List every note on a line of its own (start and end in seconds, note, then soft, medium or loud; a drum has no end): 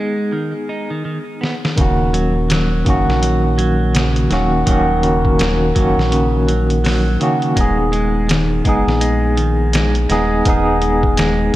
0.00 0.32 G#3 loud
0.00 1.80 B3 medium
0.00 1.80 D#4 medium
0.00 1.80 G#4 loud
0.32 0.52 D#3 medium
0.69 0.90 D#4 medium
0.90 1.04 D#3 medium
1.05 1.18 D#3 medium
1.41 1.54 B3 medium
1.41 snare medium
1.65 snare medium
1.76 2.84 D#1 loud
1.76 2.12 C#3 medium
1.76 2.82 D#3 loud
1.76 2.83 A#3 medium
1.76 2.84 C#4 medium
1.76 kick loud
1.76 closed hi-hat medium
1.81 2.85 F#4 loud
2.13 2.34 F#3 medium
2.13 closed hi-hat medium
2.50 2.85 F#3 medium
2.50 snare loud
2.50 closed hi-hat medium
2.85 3.05 F#1 medium
2.85 3.21 C#3 medium
2.85 4.27 D#3 medium
2.85 4.28 A#3 medium
2.85 4.28 C#4 medium
2.85 kick medium
2.85 closed hi-hat medium
2.90 4.29 F#4 loud
3.08 4.28 A#1 medium
3.08 snare medium
3.22 3.43 F#3 medium
3.22 closed hi-hat medium
3.58 3.93 F#3 loud
3.58 closed hi-hat medium
3.94 4.29 C#3 medium
3.94 snare loud
3.94 closed hi-hat medium
4.16 closed hi-hat soft
4.30 4.64 D#1 medium
4.30 4.64 D#3 medium
4.30 4.51 F#3 medium
4.30 4.64 A#3 medium
4.30 4.65 C#4 medium
4.30 4.65 F#4 loud
4.30 snare soft
4.30 closed hi-hat medium
4.66 5.73 D#1 loud
4.66 5.72 D#3 loud
4.66 5.01 F#3 loud
4.66 5.72 A#3 medium
4.66 5.73 C#4 medium
4.66 kick loud
4.66 closed hi-hat medium
4.71 5.74 F#4 loud
5.03 5.38 C#3 medium
5.03 closed hi-hat medium
5.25 kick loud
5.39 5.60 F#3 medium
5.39 snare loud
5.39 closed hi-hat medium
5.75 5.95 F#1 medium
5.75 7.17 D#3 medium
5.75 6.10 F#3 loud
5.75 7.17 A#3 medium
5.75 7.18 C#4 medium
5.75 kick medium
5.75 closed hi-hat medium
5.80 7.19 F#4 medium
5.97 7.17 A#1 medium
5.97 snare soft
6.12 6.46 C#3 medium
6.12 closed hi-hat medium
6.48 6.68 F#3 medium
6.48 closed hi-hat medium
6.70 closed hi-hat soft
6.84 7.19 F#3 loud
6.84 snare loud
6.84 open hi-hat medium
7.20 7.55 C#3 medium
7.20 7.53 D#3 medium
7.20 7.53 A#3 medium
7.20 7.54 C#4 medium
7.20 7.54 F#4 loud
7.20 closed hi-hat medium
7.42 closed hi-hat soft
7.56 8.62 D#1 loud
7.56 7.77 G#3 medium
7.56 8.62 B3 medium
7.56 8.63 D#4 medium
7.56 kick loud
7.56 closed hi-hat medium
7.61 8.63 G#4 loud
7.92 8.27 G#3 medium
7.92 closed hi-hat medium
8.28 8.63 D#3 medium
8.28 snare loud
8.28 closed hi-hat medium
8.65 8.84 F#1 medium
8.65 8.85 G#3 medium
8.65 10.06 B3 medium
8.65 10.07 D#4 medium
8.65 kick medium
8.65 closed hi-hat medium
8.69 10.08 G#4 loud
8.87 10.07 A#1 medium
8.87 snare medium
9.01 9.36 G#3 medium
9.01 closed hi-hat medium
9.37 9.72 D#3 medium
9.37 closed hi-hat medium
9.73 9.94 G#3 medium
9.73 snare loud
9.73 closed hi-hat loud
9.95 closed hi-hat soft
10.09 10.42 D#1 medium
10.09 10.44 G#3 loud
10.09 10.42 B3 medium
10.09 10.43 D#4 medium
10.09 10.43 G#4 loud
10.09 snare medium
10.09 closed hi-hat medium
10.45 11.51 D#1 loud
10.45 10.80 D#3 medium
10.45 11.51 B3 medium
10.45 11.52 D#4 medium
10.45 kick loud
10.45 closed hi-hat medium
10.50 11.53 G#4 loud
10.82 11.02 G#3 medium
10.82 closed hi-hat medium
11.03 kick medium
11.17 11.52 G#3 loud
11.17 snare loud
11.17 closed hi-hat medium